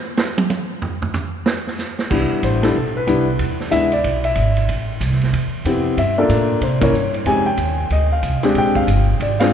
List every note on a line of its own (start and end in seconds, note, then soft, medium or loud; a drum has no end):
0.18 snare loud
0.38 high tom loud
0.50 hi-hat pedal medium
0.50 high tom medium
0.82 floor tom loud
1.02 floor tom loud
1.14 floor tom loud
1.14 hi-hat pedal medium
1.46 snare loud
1.67 snare soft
1.79 snare soft
1.79 hi-hat pedal medium
1.99 snare medium
2.10 2.29 C2 medium
2.10 2.59 G3 soft
2.10 2.59 B3 soft
2.10 2.59 D4 soft
2.10 2.59 E4 medium
2.10 kick medium
2.10 crash medium
2.31 muted upright bass stroke soft
2.43 2.74 A1 medium
2.43 2.63 C5 medium
2.43 kick soft
2.43 hi-hat pedal soft
2.43 ride medium
2.63 2.74 G3 medium
2.63 2.74 B3 soft
2.63 2.74 D4 soft
2.63 2.75 E4 medium
2.63 2.93 A4 medium
2.63 snare medium
2.63 ride medium
2.75 3.06 B1 medium
2.97 3.37 B4 medium
3.07 3.39 C2 medium
3.07 3.25 G3 medium
3.07 3.25 B3 medium
3.07 3.25 D4 medium
3.07 3.26 E4 medium
3.07 kick soft
3.07 hi-hat pedal soft
3.07 ride medium
3.39 3.71 E2 medium
3.39 kick soft
3.39 ride medium
3.60 snare soft
3.71 4.03 D2 medium
3.71 3.90 G#3 soft
3.71 3.90 B3 soft
3.71 3.90 D4 soft
3.71 3.90 E4 medium
3.71 3.91 E5 medium
3.71 kick soft
3.71 hi-hat pedal medium
3.71 ride medium
3.92 4.23 D5 medium
3.92 ride soft
4.04 4.35 B1 medium
4.04 kick soft
4.04 ride medium
4.24 4.66 E5 medium
4.24 ride soft
4.35 4.67 G#1 medium
4.35 kick soft
4.35 hi-hat pedal soft
4.35 ride medium
4.57 ride soft
4.68 5.00 A1 medium
4.68 kick soft
4.68 ride medium
5.00 5.32 C2 medium
5.00 kick soft
5.00 hi-hat pedal medium
5.00 ride medium
5.12 snare soft
5.21 snare soft
5.21 ride soft
5.33 5.64 E2 medium
5.33 kick soft
5.33 ride medium
5.65 5.96 F2 medium
5.65 5.98 B3 medium
5.65 5.98 C4 soft
5.65 5.98 E4 soft
5.65 5.98 G4 medium
5.65 kick soft
5.65 hi-hat pedal soft
5.65 ride medium
5.97 6.29 G2 medium
5.97 6.18 E5 medium
5.97 kick soft
5.97 ride medium
6.18 6.60 A#3 medium
6.18 6.60 D4 medium
6.18 6.60 F4 medium
6.18 6.60 A4 medium
6.18 6.59 D5 medium
6.29 6.61 A2 medium
6.29 kick soft
6.29 hi-hat pedal medium
6.29 ride medium
6.61 6.92 C3 medium
6.61 6.82 C5 medium
6.61 kick soft
6.61 ride medium
6.81 6.92 A#3 medium
6.81 6.93 C#4 medium
6.81 6.93 E4 medium
6.81 6.93 A#4 medium
6.81 7.13 C#5 medium
6.81 kick medium
6.81 ride medium
6.93 7.25 G2 medium
6.93 hi-hat pedal medium
7.14 ride soft
7.26 7.57 F2 medium
7.26 7.45 G#3 medium
7.26 7.44 C4 soft
7.26 7.45 D#4 soft
7.26 7.45 G4 medium
7.26 7.46 G#5 medium
7.26 kick soft
7.26 ride medium
7.46 7.88 G5 medium
7.57 7.89 D#2 medium
7.57 kick soft
7.57 hi-hat pedal medium
7.57 ride medium
7.90 8.22 D2 medium
7.90 8.11 D#5 medium
7.90 kick soft
7.90 ride soft
8.12 8.42 F5 medium
8.23 8.42 C2 medium
8.23 kick soft
8.23 hi-hat pedal soft
8.23 ride medium
8.43 8.85 G#3 medium
8.43 8.85 C4 medium
8.43 8.85 D4 medium
8.43 8.85 G4 medium
8.43 muted upright bass stroke soft
8.43 snare soft
8.43 ride soft
8.55 8.86 A#1 medium
8.55 8.76 G5 medium
8.55 kick soft
8.55 ride medium
8.75 9.17 F5 medium
8.75 kick medium
8.87 9.19 G1 medium
8.87 kick soft
8.87 hi-hat pedal soft
8.87 ride medium
9.20 9.51 G#1 medium
9.20 9.41 D5 medium
9.20 kick soft
9.20 ride medium
9.40 9.53 G#3 medium
9.40 9.53 C4 medium
9.40 9.53 D4 medium
9.40 9.53 F4 medium
9.40 9.53 F5 medium
9.40 snare medium
9.40 ride medium